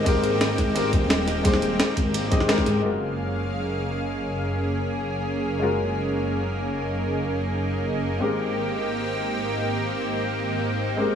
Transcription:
Already playing: G#1 G#3 A#3 C4 D#4 G4 A#4 C5 D#5
0.04 G#3 C4 G4, kick, closed hi-hat, ride
0.08 A#4
0.24 closed hi-hat
0.41 snare, closed hi-hat, ride
0.58 G#1, kick, snare, closed hi-hat
0.74 G#3 C4 G4 A#4, closed hi-hat, ride
0.93 D#1, kick, closed hi-hat
1.10 snare, closed hi-hat, ride
1.28 snare, closed hi-hat
1.43 G#3 C4 G4, kick, closed hi-hat, ride
1.47 C5
1.54 snare
1.62 closed hi-hat
1.80 snare, closed hi-hat, ride
1.97 G#1, kick, closed hi-hat
2.14 closed hi-hat, ride
2.31 G#3 C4 G4 D#5, kick, closed hi-hat
2.40 snare
2.48 G#3 C4 G4 A#4, snare, closed hi-hat, ride
2.58 kick, snare
2.66 G#2, closed hi-hat
2.82 F#1 G#3 A#3 C#4 F4 F#4 G#4 F5
2.86 A#4
5.59 G#3 D#4 F4 F#4
5.63 A#4
8.19 G#1 G#3 C4 G4
8.23 A#4
10.97 G#3 C4 G4 A#4

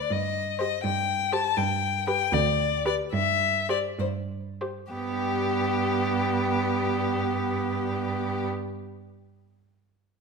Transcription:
Already playing: D5
0.11 G2 D#5
0.59 G4 C5 D#5
0.84 G2 G5
1.32 G4 C5 A5
1.57 G2 G5
2.07 G4 B4 G5
2.33 D2 D5
2.86 G4 B4 D5
3.13 G2 E5
3.69 G4 C5 D5
3.99 G2 C5
4.61 G4 C5
4.92 G2 B3 G4

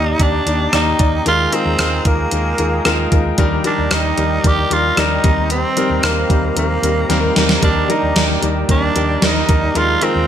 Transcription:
Already playing: D#2 D#3 A#3 D#4 G4 D5 G5 A#5
0.20 D#2 A#3 D4 D#4 G4 D5, kick, closed hi-hat
0.46 D#2 A#3 D#4 G4 D5, closed hi-hat
0.73 D#2 A#3 D#4 G4 D5, cross-stick, closed hi-hat
0.99 D#2 A#3 D#4 G4 D5, kick, closed hi-hat
1.25 D#2 D#3 G#3 D#4 F4 G#4 A#4 F5 A#5, closed hi-hat
1.52 G#3 C4 D#4 F4 A#4, closed hi-hat
1.65 D#2
1.79 D#2 G#3 D#4 F4 A#4, cross-stick, closed hi-hat
2.05 D#2 G#3 A#3 D#4 F4 A#4, kick, closed hi-hat
2.31 D#2 G#3 D#4 F4 A#4, closed hi-hat
2.58 D#2 G#3 D#4 F4 A#4, closed hi-hat
2.85 D#2 G#3 D#4 F4 A#4, cross-stick, closed hi-hat
3.11 D#2 G#3 D#4 F4 A#4, kick, closed hi-hat
3.38 D#2 D#3 G3 D4 D#4 G4 A#4 D5, kick, closed hi-hat
3.64 G3 D4 D#4 A#4, closed hi-hat
3.78 D#2
3.90 D#2 G3 D4 D#4, cross-stick, closed hi-hat
4.17 D#2 G3 D4 D#4 A#4, closed hi-hat
4.44 D#2 G3 D4 D#4 G4 A#4, kick, closed hi-hat
4.70 D#2 G3 D4 D#4 F4 A#4, closed hi-hat
4.97 D#2 G3 D4 D#4 A#4, cross-stick, closed hi-hat
5.23 D#2 D#3 G3 C4 D#4 A#4 C5, kick, closed hi-hat
5.50 C4, closed hi-hat
5.76 G3 C4 D#4 A#4, closed hi-hat
5.90 D#2
6.03 D#2 G3 A#3 C4 D#4 A#4, cross-stick, closed hi-hat
6.29 D#2 G3 C4 D#4 A#4, kick, closed hi-hat
6.55 D#2 G3 A#3 C4 D#4 A#4, closed hi-hat
6.83 D#2 G3 C4 D#4 A#4, closed hi-hat
7.09 D#2 G3 C4 D#4 A#4, snare, closed hi-hat
7.35 D#2 G3 A#3 C4 D#4 A#4, snare, closed hi-hat
7.49 snare
7.62 D#2 D#3 G3 A#3 D4 D#4 A#4 D5 G5, kick, closed hi-hat
7.88 G3 D4 D#4 A#4, closed hi-hat
8.03 D#2
8.16 D#2 G3 D4 D#4 G4 A#4, snare, closed hi-hat
8.42 D#2 G3 D4 D#4 A#4, closed hi-hat
8.68 D#2 G3 A#3 D4 D#4 A#4, kick, closed hi-hat
8.95 D#2 G3 D4 D#4 G4 A#4, closed hi-hat
9.22 D#2 G3 C4 D4 D#4 A#4, snare, closed hi-hat
9.36 D4
9.48 D#2 G3 A#3 D4 D#4 A#4, kick, closed hi-hat
9.75 D#2 D#3 F3 G#3 D#4 F4 G#4 A#4 F5, closed hi-hat
10.01 G#3 C4 D#4 F4 A#4, closed hi-hat
10.15 D#2

